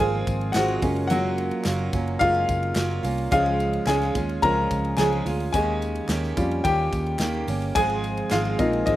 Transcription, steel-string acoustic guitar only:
0.00 0.55 F3 medium
0.00 0.54 G#3 medium
0.00 0.55 C4 medium
0.00 0.56 F4 medium
0.54 0.82 G#2 medium
0.54 0.83 D#3 loud
0.54 0.83 F3 loud
0.54 0.83 G#3 medium
0.54 0.83 C4 loud
0.54 0.80 F4 loud
0.82 1.09 A#3 medium
0.82 1.10 C#4 medium
0.82 1.10 F4 medium
1.10 1.65 F#3 loud
1.10 1.66 A#3 loud
1.10 1.67 C#4 loud
1.10 1.68 F4 medium
1.66 1.94 F#3 medium
1.66 1.94 A#3 loud
1.66 1.93 C#4 medium
1.66 1.92 F4 loud
1.93 2.20 A#3 medium
1.93 2.21 C#4 medium
1.93 2.21 F4 medium
2.20 2.74 F#3 medium
2.20 2.75 A#3 medium
2.20 2.77 C#4 medium
2.20 2.77 F4 medium
2.75 3.04 F#3 medium
2.75 3.04 A#3 medium
2.75 3.03 C#4 loud
2.75 3.02 F4 loud
3.03 3.32 A#3 medium
3.03 3.32 C#4 medium
3.03 3.32 F4 medium
3.31 3.86 C#3 medium
3.31 3.86 F3 loud
3.31 3.87 G#3 medium
3.31 3.88 C#4 medium
3.31 3.88 F4 medium
3.87 4.15 C#3 medium
3.87 4.15 F3 medium
3.87 4.16 G#3 loud
3.87 4.15 C#4 loud
3.87 4.14 F4 medium
4.15 4.42 G#3 soft
4.15 4.43 C#4 medium
4.15 4.43 F4 medium
4.42 4.98 F3 medium
4.42 4.98 G#3 medium
4.42 4.99 C#4 medium
4.42 4.99 F4 medium
4.98 5.26 C#3 medium
4.98 5.26 F3 loud
4.98 5.27 G#3 loud
4.98 5.26 C#4 medium
4.98 5.25 F4 loud
5.26 5.54 G#3 medium
5.26 5.54 C#4 medium
5.26 5.54 F4 medium
5.54 6.09 D#3 medium
5.54 6.08 A#3 medium
5.54 6.09 C#4 loud
5.54 6.10 G4 loud
6.09 6.37 D#3 medium
6.09 6.37 A#3 loud
6.09 6.37 C#4 medium
6.09 6.36 G4 loud
6.37 6.64 A#3 medium
6.37 6.65 C#4 medium
6.37 6.65 G4 medium
6.64 7.20 D#3 medium
6.64 7.20 A#3 medium
6.64 7.20 C#4 medium
6.64 7.21 G4 medium
7.20 7.48 D#3 loud
7.20 7.48 A#3 loud
7.20 7.48 C#4 loud
7.20 7.46 G4 loud
7.47 7.76 A#3 medium
7.47 7.76 C#4 medium
7.47 7.75 G4 medium
7.75 8.29 G#2 medium
7.75 8.30 D#3 medium
7.75 8.31 F3 medium
7.75 8.31 G#3 loud
7.75 8.31 C4 medium
7.75 8.32 F4 loud
8.30 8.58 G#2 medium
8.30 8.59 D#3 medium
8.30 8.59 F3 loud
8.30 8.59 G#3 medium
8.30 8.58 C4 medium
8.30 8.57 F4 medium
8.59 8.85 F3 medium
8.59 8.86 G#3 medium
8.59 8.87 C4 medium
8.59 8.86 F4 medium
8.86 8.96 F3 medium
8.86 8.96 G#3 medium
8.86 8.96 C4 medium
8.86 8.96 F4 medium

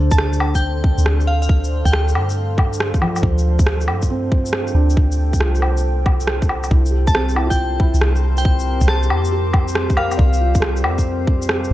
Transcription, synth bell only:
0.11 0.34 A5 medium
0.55 0.78 G5 medium
1.27 1.37 F5 medium
1.42 1.47 F5 medium
1.85 1.90 G5 medium
1.92 2.02 G5 medium
7.07 7.30 A5 medium
7.50 7.73 G5 medium
8.38 8.81 G5 medium
8.89 9.12 A5 medium
9.97 10.41 F5 medium

